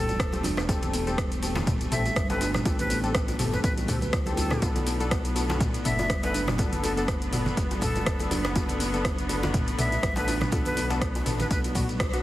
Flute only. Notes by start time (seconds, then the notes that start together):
Already playing: A4
1.92 E5
2.30 B4
2.79 B4
3.53 B4
3.64 B4
4.38 A4
5.85 E5
6.23 B4
6.83 A4
6.97 A4
7.82 A4
9.79 E5
10.17 B4
10.66 B4
11.40 B4
11.51 B4